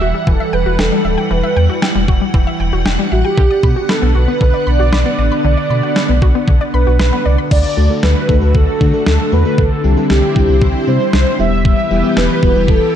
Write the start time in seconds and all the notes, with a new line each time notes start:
Already playing: E3 G3 E5 F#5
0.01 E1 F#4
0.14 G3
0.27 E1 E3 A4, kick
0.40 E5
0.53 E1 B4 G5
0.66 E1 F#4
0.79 E1 A4 G5, snare
0.92 G3
1.05 D1 E5
1.18 G5
1.30 E1 E3 B4
1.43 E5
1.56 E2 G5
1.69 F#4
1.82 G5, snare
1.95 E1 G3
2.08 E1 F#4, kick
2.21 G3
2.34 E1 E3, kick
2.47 E5
2.60 E1 G5
2.73 E1 F#4
2.86 E1 G5, snare
2.99 G3
3.12 A1 F#4 E5
3.25 G4 G5
3.37 B1 D3 B3, kick
3.51 D5
3.63 B2 B5, kick
3.76 F#4
3.89 A4 B5, snare
4.02 B1 B3
4.15 B1 F#4 B4
4.28 B3
4.41 B1 D3 B4, kick
4.54 D5
4.67 B1 D5 B5
4.79 B1 F#4
4.93 B1 B5, snare
5.05 B3
5.18 A1 D5
5.32 B5
5.44 B1 D3 D5
5.57 D5
5.70 B2 B5
5.83 F#4
5.96 B5, snare
6.09 B1 B3
6.22 B1 F#4, kick
6.35 B3
6.48 B1 D3, kick
6.61 D5
6.74 B1 B4 B5
6.87 B1 F#4
6.99 B1 B4 B5, snare
7.13 B3
7.25 C2 D5
7.38 B5
7.51 D2 D3 A3 F#4 D5, kick, crash
7.77 D2 A3 D4 F#4 A4
7.90 A3 D4 F#4 A4
8.03 D2 B4, snare
8.29 D2 A3 D4 F#4 A4, kick
8.41 D2 A3 D4 F#4 A4
8.55 D2 A4, kick
8.80 D3 A3 D4 F#4 A4, kick
8.94 A3 D4 F#4 A4
9.06 D2 A4, snare
9.32 E2 A3 D4 F#4 A4 B4
9.45 A3 D4 F#4 A4
9.58 C2 C4 E4 A4, kick
9.84 C2 G3 C4 E4 G4
9.97 G3 C4 E4 A4
10.10 C2 G4, snare
10.36 C2 G3 C4 E4 G4, kick
10.49 C2 G3 C4 E4 G4
10.62 C2, kick
10.87 C3 G3 C4 E4 G4 C5
11.00 G3 C4 E4 G4
11.13 C2 C5, snare
11.39 E1 E3 G3 B3 E4 G4 E5
11.65 E5, kick
11.91 E1 G3 B3 E4 G4
12.04 G3 B3 E4 G4
12.17 E1 B4, snare
12.42 E1 G3 B3 E4 F#4, kick
12.55 E1 G3 B3 E4 G4
12.68 E1 A4, kick